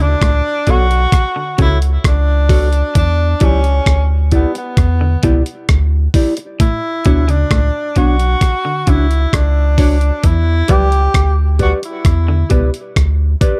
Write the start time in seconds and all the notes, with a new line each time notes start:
Already playing: D2
0.00 C#3 D4
0.22 C#2 A2, kick, cross-stick, closed hi-hat
0.67 B1 B2 F#4 A4 C#5, kick, closed hi-hat
0.91 closed hi-hat
1.12 kick, cross-stick, closed hi-hat
1.36 D3
1.58 C#2 C#3 E4 F#4 A4 C#5, kick, closed hi-hat
1.82 closed hi-hat
2.04 C#2 D4, kick, cross-stick, closed hi-hat
2.49 F#4 A4 C#5, kick, open hi-hat
2.73 closed hi-hat
2.95 E2 E3 D4, kick, closed hi-hat
3.40 C#2 F#3 C#4 E4 G4 D5, kick, closed hi-hat
3.64 closed hi-hat
3.86 D2, kick, cross-stick, closed hi-hat
4.31 B3 E4 G4 D5, kick, closed hi-hat
4.55 B3, muted clean electric guitar stroke, closed hi-hat
4.77 E2, kick, cross-stick, closed hi-hat
5.01 D3
5.23 C#2 B2 E4 G4 D5, kick, closed hi-hat
5.46 closed hi-hat
5.69 D2, kick, cross-stick, closed hi-hat
6.14 E4 G4 D5, kick, open hi-hat
6.37 muted clean electric guitar stroke, closed hi-hat
6.60 A2 E4, kick, closed hi-hat
7.05 D2 B2 D4 F#4 C#5, kick, closed hi-hat
7.28 C#3 D4, closed hi-hat
7.51 C#2 A2, kick, cross-stick, closed hi-hat
7.96 B1 B2 D4 F#4 C#5, kick, closed hi-hat
8.19 muted clean electric guitar stroke, closed hi-hat
8.41 kick, cross-stick, closed hi-hat
8.65 D3
8.87 C#2 C#3 D4 E4 F#4 C#5, kick, closed hi-hat
9.11 closed hi-hat
9.33 C#2 D4, kick, cross-stick, closed hi-hat
9.78 D4 F#4 C#5, kick, open hi-hat
10.01 closed hi-hat
10.24 E2 E3 E4, kick, closed hi-hat
10.68 C#2 F#3 G4 B4 D5, kick, closed hi-hat
10.92 closed hi-hat
11.14 D2, kick, cross-stick, closed hi-hat
11.59 F#4 G4 B4 D5, kick, closed hi-hat
11.82 E4, muted clean electric guitar stroke, closed hi-hat
12.05 E2, kick, cross-stick, closed hi-hat
12.28 D3
12.50 C#2 B2 G4 B4 D5, kick, closed hi-hat
12.74 closed hi-hat
12.96 D2, kick, cross-stick, closed hi-hat
13.41 G4 B4 D5, kick, closed hi-hat